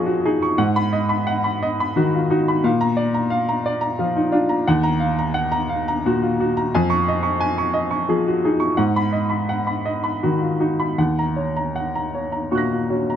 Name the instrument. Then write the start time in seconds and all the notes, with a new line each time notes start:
upright piano
Already playing: F2 F3 G#4 D#5 G#5 C#6
0.06 F#4
0.25 D#4 G#4
0.42 C#6
0.58 G#2 F#5
0.76 B5
0.93 D#5
1.09 B5
1.27 F#5
1.44 B5
1.63 D#5
1.80 B5
1.96 D#3 F#4
2.14 F4
2.30 D#4 F#4
2.48 B5
2.64 A#2 F5
2.81 A#5
2.97 D5
3.14 A#5
3.30 F5
3.49 A#5
3.66 D5
3.81 A#5
3.99 F3 F4
4.16 D#4
4.32 D4 F4
4.49 A#5
4.68 D#2 F#5
4.83 A#5
5.00 F5
5.19 A#5
5.34 F#5
5.52 A#5
5.69 F5
5.88 A#5
6.06 A#2 F#4
6.23 F4
6.40 F#4
6.57 A#5
6.75 F2 G#5
6.90 C#6
7.08 D#5
7.23 C#6
7.40 G#5
7.58 C#6
7.74 D#5
7.91 C#6
8.09 F3 G#4
8.27 F#4
8.45 D#4 G#4
8.60 C#6
8.77 G#2 F#5
8.96 B5
9.13 D#5
9.30 B5
9.49 F#5
9.67 B5
9.86 D#5
10.04 B5
10.23 D#3 F#4
10.42 F4
10.60 D#4 F#4
10.80 B5
10.98 D#2 F#5
11.19 A#5
11.36 C#5
11.56 A#5
11.76 F#5
11.95 A#5
12.15 C#5
12.32 A#5
12.51 A#2 F#4 C#6 F#6
12.58 A#6
12.72 F4
12.90 C#4 F#4
13.10 A#5